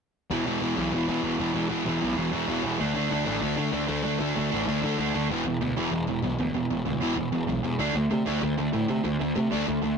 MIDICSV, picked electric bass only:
0, 0, Header, 1, 2, 480
1, 0, Start_track
1, 0, Tempo, 312500
1, 459, Time_signature, 4, 2, 24, 8
1, 15328, End_track
2, 0, Start_track
2, 0, Title_t, "Picked electric bass"
2, 0, Program_c, 0, 34
2, 470, Note_on_c, 0, 28, 89
2, 658, Note_off_c, 0, 28, 0
2, 709, Note_on_c, 0, 28, 81
2, 897, Note_off_c, 0, 28, 0
2, 949, Note_on_c, 0, 28, 82
2, 1137, Note_off_c, 0, 28, 0
2, 1181, Note_on_c, 0, 35, 71
2, 1373, Note_off_c, 0, 35, 0
2, 1425, Note_on_c, 0, 28, 103
2, 1615, Note_off_c, 0, 28, 0
2, 1665, Note_on_c, 0, 40, 83
2, 1854, Note_off_c, 0, 40, 0
2, 1896, Note_on_c, 0, 28, 83
2, 2089, Note_off_c, 0, 28, 0
2, 2147, Note_on_c, 0, 28, 78
2, 2335, Note_off_c, 0, 28, 0
2, 2377, Note_on_c, 0, 28, 90
2, 2569, Note_off_c, 0, 28, 0
2, 2619, Note_on_c, 0, 28, 82
2, 2810, Note_off_c, 0, 28, 0
2, 2862, Note_on_c, 0, 28, 85
2, 3052, Note_off_c, 0, 28, 0
2, 3109, Note_on_c, 0, 35, 69
2, 3296, Note_off_c, 0, 35, 0
2, 3328, Note_on_c, 0, 28, 105
2, 3523, Note_off_c, 0, 28, 0
2, 3575, Note_on_c, 0, 40, 81
2, 3768, Note_off_c, 0, 40, 0
2, 3807, Note_on_c, 0, 28, 87
2, 4003, Note_off_c, 0, 28, 0
2, 4055, Note_on_c, 0, 28, 78
2, 4248, Note_off_c, 0, 28, 0
2, 4299, Note_on_c, 0, 38, 86
2, 4490, Note_off_c, 0, 38, 0
2, 4537, Note_on_c, 0, 38, 87
2, 4728, Note_off_c, 0, 38, 0
2, 4779, Note_on_c, 0, 38, 84
2, 4970, Note_off_c, 0, 38, 0
2, 5016, Note_on_c, 0, 33, 80
2, 5208, Note_off_c, 0, 33, 0
2, 5250, Note_on_c, 0, 38, 94
2, 5444, Note_off_c, 0, 38, 0
2, 5493, Note_on_c, 0, 50, 85
2, 5686, Note_off_c, 0, 50, 0
2, 5718, Note_on_c, 0, 38, 85
2, 5917, Note_off_c, 0, 38, 0
2, 5969, Note_on_c, 0, 38, 78
2, 6164, Note_off_c, 0, 38, 0
2, 6204, Note_on_c, 0, 38, 80
2, 6401, Note_off_c, 0, 38, 0
2, 6442, Note_on_c, 0, 38, 76
2, 6640, Note_off_c, 0, 38, 0
2, 6708, Note_on_c, 0, 38, 86
2, 6895, Note_off_c, 0, 38, 0
2, 6940, Note_on_c, 0, 33, 67
2, 7131, Note_off_c, 0, 33, 0
2, 7187, Note_on_c, 0, 38, 99
2, 7375, Note_off_c, 0, 38, 0
2, 7425, Note_on_c, 0, 50, 89
2, 7613, Note_off_c, 0, 50, 0
2, 7654, Note_on_c, 0, 38, 82
2, 7847, Note_off_c, 0, 38, 0
2, 7908, Note_on_c, 0, 38, 80
2, 8095, Note_off_c, 0, 38, 0
2, 8149, Note_on_c, 0, 28, 89
2, 8304, Note_off_c, 0, 28, 0
2, 8387, Note_on_c, 0, 28, 86
2, 8543, Note_off_c, 0, 28, 0
2, 8627, Note_on_c, 0, 38, 89
2, 8783, Note_off_c, 0, 38, 0
2, 8865, Note_on_c, 0, 28, 76
2, 9022, Note_off_c, 0, 28, 0
2, 9094, Note_on_c, 0, 28, 102
2, 9254, Note_off_c, 0, 28, 0
2, 9341, Note_on_c, 0, 28, 89
2, 9499, Note_off_c, 0, 28, 0
2, 9575, Note_on_c, 0, 35, 83
2, 9735, Note_off_c, 0, 35, 0
2, 9824, Note_on_c, 0, 38, 88
2, 9981, Note_off_c, 0, 38, 0
2, 10055, Note_on_c, 0, 28, 84
2, 10215, Note_off_c, 0, 28, 0
2, 10309, Note_on_c, 0, 28, 85
2, 10464, Note_off_c, 0, 28, 0
2, 10548, Note_on_c, 0, 38, 90
2, 10704, Note_off_c, 0, 38, 0
2, 10779, Note_on_c, 0, 28, 81
2, 10938, Note_off_c, 0, 28, 0
2, 11016, Note_on_c, 0, 28, 100
2, 11175, Note_off_c, 0, 28, 0
2, 11247, Note_on_c, 0, 28, 90
2, 11410, Note_off_c, 0, 28, 0
2, 11483, Note_on_c, 0, 35, 86
2, 11647, Note_off_c, 0, 35, 0
2, 11729, Note_on_c, 0, 40, 85
2, 11891, Note_off_c, 0, 40, 0
2, 11966, Note_on_c, 0, 38, 89
2, 12129, Note_off_c, 0, 38, 0
2, 12207, Note_on_c, 0, 38, 86
2, 12370, Note_off_c, 0, 38, 0
2, 12464, Note_on_c, 0, 48, 84
2, 12621, Note_off_c, 0, 48, 0
2, 12701, Note_on_c, 0, 38, 81
2, 12860, Note_off_c, 0, 38, 0
2, 12945, Note_on_c, 0, 38, 101
2, 13102, Note_off_c, 0, 38, 0
2, 13176, Note_on_c, 0, 38, 95
2, 13336, Note_off_c, 0, 38, 0
2, 13423, Note_on_c, 0, 45, 84
2, 13581, Note_off_c, 0, 45, 0
2, 13661, Note_on_c, 0, 48, 86
2, 13820, Note_off_c, 0, 48, 0
2, 13890, Note_on_c, 0, 38, 89
2, 14052, Note_off_c, 0, 38, 0
2, 14144, Note_on_c, 0, 38, 91
2, 14302, Note_off_c, 0, 38, 0
2, 14381, Note_on_c, 0, 48, 88
2, 14540, Note_off_c, 0, 48, 0
2, 14624, Note_on_c, 0, 38, 78
2, 14782, Note_off_c, 0, 38, 0
2, 14872, Note_on_c, 0, 38, 93
2, 15027, Note_off_c, 0, 38, 0
2, 15107, Note_on_c, 0, 38, 87
2, 15264, Note_off_c, 0, 38, 0
2, 15328, End_track
0, 0, End_of_file